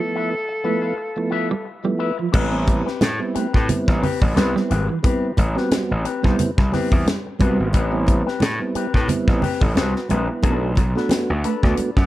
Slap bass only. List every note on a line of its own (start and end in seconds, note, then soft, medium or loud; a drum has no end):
2.34 2.81 A1 loud
3.02 3.19 A2 loud
3.36 muted slap bass stroke medium
3.55 3.68 A2 loud
3.70 muted slap bass stroke soft
3.88 4.01 A1 medium
4.22 4.35 A1 medium
4.37 4.54 C2 loud
4.71 4.87 G#1 loud
5.38 5.55 A1 loud
5.91 6.04 A1 medium
6.24 6.38 C2 medium
6.40 muted slap bass stroke soft
6.58 6.71 C2 medium
6.92 7.05 E2 medium
7.41 7.57 C2 loud
7.60 7.73 G#1 loud
7.74 8.21 A1 loud
8.42 8.58 A2 loud
8.75 muted slap bass stroke soft
8.95 9.08 A2 loud
9.08 muted slap bass stroke soft
9.28 9.41 A1 medium
9.62 9.75 A1 medium
9.76 9.93 C2 loud
10.10 10.27 A#1 medium
10.44 10.74 B1 loud
10.78 10.94 B1 medium
11.30 11.43 D2 loud
11.63 11.77 D2 medium
11.79 muted slap bass stroke medium
11.97 12.06 F#2 medium